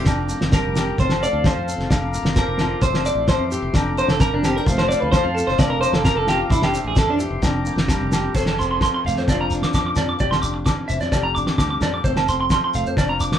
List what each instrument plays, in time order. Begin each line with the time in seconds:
Already playing: tonewheel organ D6
0.05 fingered electric bass F1, nylon-string guitar F2 D4, tonewheel organ G5 A#5, kick, snare, low agogo, shekere
0.29 nylon-string guitar A#3, shekere
0.41 fingered electric bass F1, snare
0.52 nylon-string guitar G3, clean electric guitar A#4, kick, snare, low agogo, shekere
0.65 fingered electric bass F1
0.76 nylon-string guitar G4, snare, low agogo, shekere
0.98 fingered electric bass F1, nylon-string guitar F2 C4, clean electric guitar C5, tonewheel organ F5 A5 C6, kick, shekere
1.09 snare, low agogo
1.23 nylon-string guitar A3, clean electric guitar D5, shekere
1.33 fingered electric bass D2
1.44 nylon-string guitar F3, clean electric guitar C5, kick, snare, low agogo, shekere
1.56 fingered electric bass F2
1.68 nylon-string guitar A4, shekere
1.78 fingered electric bass F1, snare
1.89 fingered electric bass F1, nylon-string guitar F2 D4, tonewheel organ A#5 D6, kick, snare, low agogo, shekere
2.14 nylon-string guitar A#3, shekere
2.23 fingered electric bass F1, snare
2.36 nylon-string guitar F3, clean electric guitar A#4, kick, snare, low agogo, shekere
2.47 fingered electric bass F1
2.58 nylon-string guitar F4, snare, low agogo
2.82 fingered electric bass F1, nylon-string guitar F2 D4, clean electric guitar C5, tonewheel organ E5 C6, kick, shekere
2.94 snare, low agogo
3.06 nylon-string guitar C4, clean electric guitar D5, shekere
3.15 fingered electric bass A1
3.28 nylon-string guitar E3, clean electric guitar C5, kick, snare, low agogo, shekere
3.39 fingered electric bass F2
3.52 nylon-string guitar G4, shekere
3.62 fingered electric bass F1
3.73 fingered electric bass F1, nylon-string guitar F2 D4, tonewheel organ G5 A#5, kick, snare, low agogo, shekere
3.98 nylon-string guitar A#3, clean electric guitar C5, shekere
4.08 fingered electric bass F1, clean electric guitar A4, snare
4.20 clean electric guitar A#4, kick, snare, low agogo, shekere
4.32 fingered electric bass F1, clean electric guitar D4
4.43 nylon-string guitar C4, clean electric guitar G4, snare, low agogo, shekere
4.56 nylon-string guitar D4, clean electric guitar A#4
4.65 fingered electric bass F1, nylon-string guitar F3, tonewheel organ F5 A5 C6, muted clean electric guitar stroke, muted nylon-string guitar stroke, kick, shekere
4.70 nylon-string guitar A3 C4
4.78 clean electric guitar C5, snare, low agogo
4.88 nylon-string guitar A3, clean electric guitar D5, snare, shekere
5.00 fingered electric bass D2, clean electric guitar B4
5.12 nylon-string guitar F3, clean electric guitar C5, kick, snare, low agogo, shekere
5.23 fingered electric bass F2, clean electric guitar F4
5.35 nylon-string guitar C4, clean electric guitar A4, shekere
5.47 fingered electric bass F1, clean electric guitar C5, snare
5.58 fingered electric bass F1, nylon-string guitar F2 D4, clean electric guitar D5, tonewheel organ A#5 D6, kick, snare, low agogo, shekere
5.70 clean electric guitar A#4
5.81 nylon-string guitar A#3, clean electric guitar C5, shekere
5.93 fingered electric bass F1, clean electric guitar A4, snare
6.05 nylon-string guitar F3, clean electric guitar A#4, kick, snare, low agogo, shekere
6.16 fingered electric bass F1, clean electric guitar A4
6.27 nylon-string guitar F4, clean electric guitar G4, snare, low agogo, shekere
6.50 fingered electric bass F1, nylon-string guitar F2 D4, clean electric guitar E4, tonewheel organ E5 C6, kick, shekere
6.62 clean electric guitar G4, snare, low agogo
6.72 nylon-string guitar C4, snare, shekere
6.84 fingered electric bass A1, clean electric guitar G#4
6.95 nylon-string guitar E3, clean electric guitar A4, kick, snare, low agogo, shekere
7.07 fingered electric bass F2, clean electric guitar D4
7.20 nylon-string guitar G4, shekere
7.30 fingered electric bass F1
7.42 fingered electric bass F1, nylon-string guitar F2 D4, tonewheel organ G5 A#5, kick, snare, low agogo, shekere
7.66 nylon-string guitar A#3, shekere
7.76 fingered electric bass F1, snare
7.88 nylon-string guitar G3, kick, snare, low agogo, shekere
8.01 fingered electric bass F1
8.12 nylon-string guitar G4, snare, low agogo, shekere
8.34 fingered electric bass F1, nylon-string guitar F2 A4, clean electric guitar C5, kick, crash, shekere
8.46 clean electric guitar A5, snare, low agogo
8.58 nylon-string guitar C4, clean electric guitar C6, snare, shekere
8.71 clean electric guitar C6
8.81 nylon-string guitar F3, clean electric guitar C6, kick, snare, low agogo, shekere
8.94 clean electric guitar C6
9.05 fingered electric bass F1, nylon-string guitar A3, clean electric guitar F5, shekere
9.16 fingered electric bass F2, clean electric guitar C5, snare, shekere
9.28 fingered electric bass F1, nylon-string guitar F2 F3 A#3 D4, clean electric guitar D5, kick, snare, low agogo, shekere
9.32 nylon-string guitar F4
9.41 clean electric guitar A#5
9.51 nylon-string guitar D4, shekere
9.62 clean electric guitar D6, snare
9.74 fingered electric bass F2, nylon-string guitar F3, clean electric guitar D6, kick, snare, low agogo, shekere
9.86 clean electric guitar D6
9.96 fingered electric bass F2, nylon-string guitar A#3, clean electric guitar D5, snare, low agogo, shekere
10.09 clean electric guitar D6
10.19 fingered electric bass F1, nylon-string guitar F2 G4, clean electric guitar D5, kick, shekere
10.31 clean electric guitar C6, snare, low agogo
10.42 nylon-string guitar D4, clean electric guitar D6, shekere
10.54 muted clean electric guitar stroke
10.66 nylon-string guitar E3, clean electric guitar D6, kick, snare, low agogo, shekere
10.88 fingered electric bass F1, nylon-string guitar C4, clean electric guitar E5, shekere
11.01 fingered electric bass F2, clean electric guitar D5, snare, shekere
11.12 fingered electric bass F1, nylon-string guitar F2 G4, clean electric guitar D5, kick, snare, low agogo, shekere
11.23 clean electric guitar A#5
11.35 nylon-string guitar D4, clean electric guitar D6, shekere
11.47 clean electric guitar D6, snare
11.58 fingered electric bass D2, nylon-string guitar G3, clean electric guitar D6, kick, snare, low agogo, shekere
11.70 clean electric guitar D6
11.81 fingered electric bass F2, nylon-string guitar A#3, clean electric guitar D5, snare, low agogo, shekere
11.94 clean electric guitar D6
12.04 fingered electric bass F1, nylon-string guitar F2 A3 C4 A4, clean electric guitar C5, muted nylon-string guitar stroke, kick, shekere
12.16 clean electric guitar A5, snare, low agogo
12.27 nylon-string guitar C4, clean electric guitar C6, snare, shekere
12.41 clean electric guitar C6
12.49 nylon-string guitar F3, clean electric guitar C6, kick, snare, low agogo, shekere
12.64 clean electric guitar C6
12.74 fingered electric bass F1, nylon-string guitar A3, clean electric guitar F5, shekere
12.86 fingered electric bass F2, clean electric guitar C5, shekere
12.97 fingered electric bass F1, nylon-string guitar F2 F3 A#3 D4 F4, clean electric guitar D5, kick, snare, low agogo, shekere
13.09 clean electric guitar A#5
13.20 nylon-string guitar D4, clean electric guitar D6, shekere
13.32 clean electric guitar D6, snare